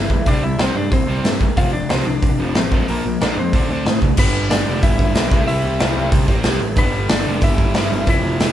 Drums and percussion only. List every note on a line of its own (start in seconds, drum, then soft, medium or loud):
0.10 kick medium
0.26 kick loud
0.26 open hi-hat medium
0.59 snare loud
0.59 open hi-hat medium
0.92 kick loud
0.92 open hi-hat medium
1.24 snare loud
1.24 open hi-hat medium
1.41 kick medium
1.57 kick loud
1.57 open hi-hat medium
1.89 snare loud
1.89 open hi-hat medium
2.22 kick loud
2.22 open hi-hat medium
2.55 snare loud
2.55 open hi-hat medium
2.72 kick loud
2.88 open hi-hat medium
3.21 snare loud
3.21 open hi-hat medium
3.53 kick loud
3.53 open hi-hat medium
3.86 snare loud
3.86 open hi-hat medium
4.02 kick medium
4.17 kick loud
4.17 crash loud
4.50 snare loud
4.50 open hi-hat medium
4.83 kick loud
4.83 open hi-hat medium
4.99 kick medium
5.15 snare loud
5.15 open hi-hat medium
5.31 kick loud
5.48 open hi-hat medium
5.80 snare loud
5.80 open hi-hat medium
6.12 kick loud
6.12 open hi-hat medium
6.28 kick medium
6.43 snare loud
6.43 open hi-hat medium
6.76 kick loud
6.76 open hi-hat medium
7.09 snare loud
7.09 open hi-hat medium
7.41 kick loud
7.41 open hi-hat medium
7.58 kick medium
7.74 snare loud
7.74 open hi-hat medium
8.07 kick loud
8.07 open hi-hat medium
8.40 snare loud
8.40 open hi-hat medium